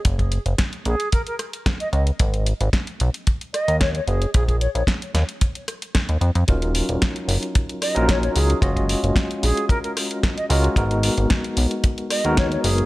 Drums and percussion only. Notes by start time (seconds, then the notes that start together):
0.05 kick, closed hi-hat
0.19 kick, closed hi-hat
0.32 closed hi-hat
0.46 closed hi-hat
0.58 kick, snare, closed hi-hat
0.73 closed hi-hat
0.85 closed hi-hat
1.00 closed hi-hat
1.12 kick, closed hi-hat
1.27 closed hi-hat
1.39 cross-stick, closed hi-hat
1.53 closed hi-hat
1.66 kick, cross-stick, snare, closed hi-hat
1.80 closed hi-hat
1.93 closed hi-hat
2.07 closed hi-hat
2.20 kick, closed hi-hat
2.34 closed hi-hat
2.46 closed hi-hat
2.61 closed hi-hat
2.73 kick, snare, closed hi-hat
2.87 closed hi-hat
3.00 closed hi-hat
3.14 closed hi-hat
3.27 kick, closed hi-hat
3.41 closed hi-hat
3.54 cross-stick, closed hi-hat
3.68 closed hi-hat
3.81 kick, cross-stick, snare, closed hi-hat
3.95 closed hi-hat
4.08 closed hi-hat
4.22 closed hi-hat
4.34 kick, closed hi-hat
4.48 kick, closed hi-hat
4.61 closed hi-hat
4.75 closed hi-hat
4.87 kick, snare, closed hi-hat
5.02 closed hi-hat
5.15 snare, closed hi-hat
5.29 closed hi-hat
5.41 kick, closed hi-hat
5.55 closed hi-hat
5.68 cross-stick, closed hi-hat
5.82 closed hi-hat
5.95 kick, cross-stick, snare, closed hi-hat
6.09 closed hi-hat
6.21 closed hi-hat
6.35 closed hi-hat
6.48 kick, closed hi-hat
6.62 closed hi-hat
6.75 open hi-hat
6.89 closed hi-hat
7.02 kick, snare, closed hi-hat
7.16 closed hi-hat
7.29 open hi-hat
7.43 closed hi-hat
7.55 kick, closed hi-hat
7.69 closed hi-hat
7.82 cross-stick, open hi-hat
7.96 closed hi-hat
8.09 kick, cross-stick, snare, closed hi-hat
8.23 closed hi-hat
8.36 open hi-hat
8.50 closed hi-hat
8.62 kick, closed hi-hat
8.77 kick, closed hi-hat
8.89 open hi-hat
9.04 closed hi-hat
9.16 kick, snare, closed hi-hat
9.31 closed hi-hat
9.43 open hi-hat
9.57 closed hi-hat
9.69 kick, closed hi-hat
9.84 closed hi-hat
9.97 cross-stick, open hi-hat
10.11 closed hi-hat
10.23 kick, cross-stick, snare, closed hi-hat
10.38 closed hi-hat
10.50 open hi-hat
10.64 closed hi-hat
10.76 kick, closed hi-hat
10.91 closed hi-hat
11.03 open hi-hat
11.18 closed hi-hat
11.30 kick, snare, closed hi-hat
11.44 closed hi-hat
11.57 open hi-hat
11.71 closed hi-hat
11.84 kick, closed hi-hat
11.98 closed hi-hat
12.10 cross-stick, open hi-hat
12.25 closed hi-hat
12.37 kick, cross-stick, snare, closed hi-hat
12.52 closed hi-hat
12.64 open hi-hat
12.78 closed hi-hat